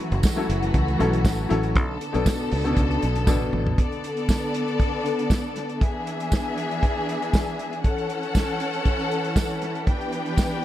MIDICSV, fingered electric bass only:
0, 0, Header, 1, 2, 480
1, 0, Start_track
1, 0, Tempo, 507185
1, 1663, Time_signature, 4, 2, 24, 8
1, 10076, End_track
2, 0, Start_track
2, 0, Title_t, "Fingered electric bass"
2, 0, Program_c, 0, 33
2, 112, Note_on_c, 0, 30, 104
2, 204, Note_off_c, 0, 30, 0
2, 467, Note_on_c, 0, 30, 92
2, 662, Note_off_c, 0, 30, 0
2, 707, Note_on_c, 0, 37, 100
2, 902, Note_off_c, 0, 37, 0
2, 948, Note_on_c, 0, 35, 98
2, 1183, Note_off_c, 0, 35, 0
2, 1183, Note_on_c, 0, 33, 88
2, 1380, Note_off_c, 0, 33, 0
2, 1431, Note_on_c, 0, 33, 82
2, 1665, Note_off_c, 0, 33, 0
2, 1665, Note_on_c, 0, 35, 102
2, 1861, Note_off_c, 0, 35, 0
2, 2035, Note_on_c, 0, 35, 109
2, 2125, Note_off_c, 0, 35, 0
2, 2388, Note_on_c, 0, 37, 100
2, 2583, Note_off_c, 0, 37, 0
2, 2624, Note_on_c, 0, 37, 91
2, 2820, Note_off_c, 0, 37, 0
2, 2869, Note_on_c, 0, 35, 92
2, 3099, Note_off_c, 0, 35, 0
2, 3099, Note_on_c, 0, 33, 95
2, 3297, Note_off_c, 0, 33, 0
2, 3342, Note_on_c, 0, 33, 83
2, 3539, Note_off_c, 0, 33, 0
2, 10076, End_track
0, 0, End_of_file